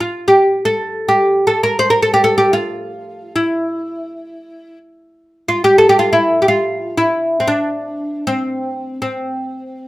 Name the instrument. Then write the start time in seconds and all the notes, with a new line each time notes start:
oud
0.00 F4
0.28 G4
0.65 A4
1.08 G4
1.47 A4
1.63 A#4
1.79 C5
1.90 A#4
2.02 A4
2.14 G4
2.24 A4
2.38 G4
2.53 F4
3.36 E4
5.48 F4
5.64 G4
5.78 A4
5.89 G4
5.99 F4
6.13 E4
6.42 G4
6.48 F4
6.98 E4
7.40 C4
7.48 D4
8.27 C4
9.02 C4